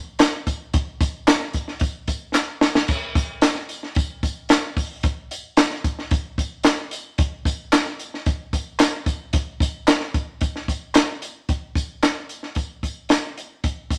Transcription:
0.19 snare, clap, closed hi-hat, tambourine
0.47 kick, closed hi-hat, tambourine
0.74 kick, closed hi-hat, tambourine
1.01 kick, closed hi-hat, tambourine
1.27 snare, clap, closed hi-hat, tambourine
1.40 snare
1.53 kick, closed hi-hat, tambourine
1.68 snare
1.80 kick, closed hi-hat, tambourine
2.07 kick, closed hi-hat, tambourine
2.35 snare, clap, tambourine
2.61 snare, tambourine
2.75 snare
2.88 kick, tambourine, crash
3.15 kick, closed hi-hat, tambourine
3.42 snare, clap, closed hi-hat, tambourine
3.55 snare
3.69 closed hi-hat, tambourine
3.83 snare
3.95 kick, closed hi-hat, tambourine
4.23 kick, closed hi-hat, tambourine
4.49 snare, clap, closed hi-hat, tambourine
4.77 kick, open hi-hat, tambourine
5.03 kick, closed hi-hat, tambourine
5.31 closed hi-hat, tambourine
5.57 snare, clap, closed hi-hat, tambourine
5.70 snare
5.84 kick, closed hi-hat, tambourine
5.99 snare
6.11 kick, closed hi-hat, tambourine
6.38 kick, closed hi-hat, tambourine
6.63 snare, clap, closed hi-hat, tambourine
6.91 closed hi-hat, tambourine
7.18 kick, closed hi-hat, tambourine
7.45 kick, closed hi-hat, tambourine
7.72 snare, clap, closed hi-hat, tambourine
7.86 snare
7.99 closed hi-hat, tambourine
8.14 snare
8.26 kick, closed hi-hat, tambourine
8.53 kick, closed hi-hat, tambourine
8.79 snare, clap, closed hi-hat, tambourine
9.06 kick, closed hi-hat, tambourine
9.33 kick, closed hi-hat, tambourine
9.60 kick, closed hi-hat, tambourine
9.87 snare, clap, closed hi-hat, tambourine
10.00 snare
10.14 kick, closed hi-hat, tambourine
10.41 kick, closed hi-hat, tambourine
10.56 snare
10.68 kick, closed hi-hat, tambourine
10.94 snare, clap, closed hi-hat, tambourine
11.22 closed hi-hat, tambourine
11.49 kick, closed hi-hat, tambourine
11.75 kick, closed hi-hat, tambourine
12.03 snare, clap, closed hi-hat, tambourine
12.29 closed hi-hat, tambourine
12.43 snare
12.55 kick, closed hi-hat, tambourine
12.83 kick, closed hi-hat, tambourine
13.09 snare, clap, closed hi-hat, tambourine
13.37 closed hi-hat, tambourine
13.64 kick, closed hi-hat, tambourine
13.90 kick, closed hi-hat, tambourine

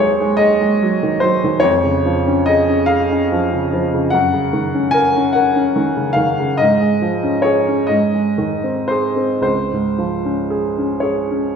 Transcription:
Already playing: D#2 D#3 F#3 G#3 C5 C#5
0.00 G#4
0.20 G#3
0.37 G#4 D#5
0.61 G#3
0.82 F#3
1.03 D#3
1.20 F#3 C5
1.44 D#3
1.60 F2 C#5
1.84 C#3
2.05 F3
2.27 C#4
2.46 G#4 D#5
2.69 C#4
2.86 G#4 F5
3.11 C#4
3.32 F3
3.53 C#3
3.73 F3
3.94 C#3
4.10 F#2 F#5
4.33 C#3
4.53 D#3
4.74 C#4
4.91 A#4 G#5
5.17 C#4
5.33 A#4 F#5
5.55 C#4
5.76 D#3
5.96 C#3
6.13 D#3 F5
6.40 C#3
6.57 G#2 D#5
6.81 G#3
7.02 F3
7.23 C#4
7.42 G#4 C#5
7.67 C#4
7.87 G#2 D#5
8.14 G#3
8.38 D#3
8.64 C4
8.88 G#4 C5
9.16 C4
9.41 C#2 C5
9.72 G#2
9.98 F3
10.25 C#4
10.50 G#4
10.78 C#4
11.00 G#4 C#5
11.30 C#4

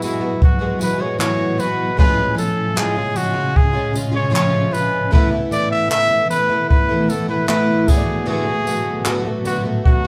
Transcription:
Already playing: A2 F#3 A3 B3 E4 G#4 F#5 G#5
0.02 E3 G#3 B3 E4 F#4, tambourine
0.20 G#3 B3 F#4
0.42 F#4, kick
0.59 G#3 B3 F#4
0.79 E3 G#3 B3 F#4 B4, tambourine
0.98 G#3 B3 F#4 C#5
1.19 A2 E3 G#3 B3 F#4 C#5, clap
1.57 E3 G#3 B3 F#4 B4, tambourine
1.97 A2 C#3 F3 G#3 C#4 F4 B4 G#5, kick
2.02 F5
2.17 G#3 C#4 F4
2.35 F3 C#4 F4 A4, tambourine
2.75 A2 F3 G#3 C#4 F4 G#4, clap
2.95 G#3 C#4 F4
3.14 F3 G#3 C#4 F4 F#4, tambourine
3.34 G#3 C#4 F4
3.56 G#4, kick
3.73 G#3 C#4 F4
3.93 F3 G#3 C#4 F4, tambourine
4.12 G#3 C#4 F4 C#5
4.30 A2 F3 G#3 C#4 F4
4.35 C#5, clap
4.71 F3 G#3 C#4 F4 B4, tambourine
5.11 A2 E3 A3 B3 E4 A4 B4, kick
5.16 E5
5.31 A3 B3 E4
5.51 E3 A3 B3 E4 D5, tambourine
5.71 E5
5.89 A2 E3 A3 B3 E4 E5, clap
6.10 A3 B3 E4
6.30 E3 A3 B3 E4 B4, tambourine
6.49 A3 B3 E4
6.69 B4, kick
6.89 A3 B3 E4
7.08 E3 A3 B3 E4 A4, tambourine
7.29 A3 B3 E4 B4
7.47 A2 E3 A3 B3 E4 B4, clap
7.86 A2 D3 F#3 A3 B3 F#4 G#4, kick, tambourine, crash
7.90 C#5
7.97 D5
8.26 A2 D3 A3 B3 F#4 G#4
8.46 A3 B3 F#4
8.64 D3 A3 B3 F#4, tambourine
9.04 A2 D3 A3 B3 F#4, clap
9.24 A3 B3 F#4
9.45 D3 A3 B3 D4 F#4, tambourine
9.63 A3 B3 F#4
9.85 F#4, kick

